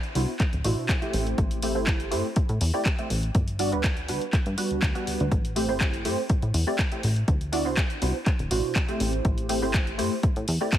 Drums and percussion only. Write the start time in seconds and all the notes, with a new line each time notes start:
0.03 closed hi-hat
0.15 open hi-hat
0.40 kick, clap, closed hi-hat
0.53 closed hi-hat
0.64 open hi-hat
0.89 kick, clap, closed hi-hat
1.02 closed hi-hat
1.13 open hi-hat
1.27 closed hi-hat
1.38 kick, closed hi-hat
1.51 closed hi-hat
1.62 open hi-hat
1.87 kick, clap, closed hi-hat
2.00 closed hi-hat
2.12 open hi-hat
2.36 kick, closed hi-hat
2.49 closed hi-hat
2.61 open hi-hat
2.85 kick, clap, closed hi-hat
2.99 closed hi-hat
3.10 open hi-hat
3.23 closed hi-hat
3.35 kick, closed hi-hat
3.48 closed hi-hat
3.59 open hi-hat
3.72 closed hi-hat
3.84 kick, clap, closed hi-hat
3.97 closed hi-hat
4.08 open hi-hat
4.21 closed hi-hat
4.33 kick, clap, closed hi-hat
4.46 closed hi-hat
4.58 open hi-hat
4.71 closed hi-hat
4.82 kick, clap, closed hi-hat
4.95 closed hi-hat
5.07 open hi-hat
5.20 closed hi-hat
5.32 kick, closed hi-hat
5.45 closed hi-hat
5.56 open hi-hat
5.81 kick, clap, closed hi-hat
5.94 closed hi-hat
6.05 open hi-hat
6.30 kick, closed hi-hat
6.42 closed hi-hat
6.54 open hi-hat
6.79 kick, clap, closed hi-hat
6.92 closed hi-hat
7.03 open hi-hat
7.16 closed hi-hat
7.28 kick, closed hi-hat
7.41 closed hi-hat
7.53 open hi-hat
7.77 kick, clap, closed hi-hat
7.90 closed hi-hat
8.02 open hi-hat
8.26 kick, clap, closed hi-hat
8.39 closed hi-hat
8.51 open hi-hat
8.76 kick, clap, closed hi-hat
8.89 closed hi-hat
9.00 open hi-hat
9.13 closed hi-hat
9.25 kick, closed hi-hat
9.38 closed hi-hat
9.49 open hi-hat
9.74 kick, clap, closed hi-hat
9.87 closed hi-hat
9.99 open hi-hat
10.23 kick, closed hi-hat
10.36 closed hi-hat
10.48 open hi-hat
10.73 kick, clap, closed hi-hat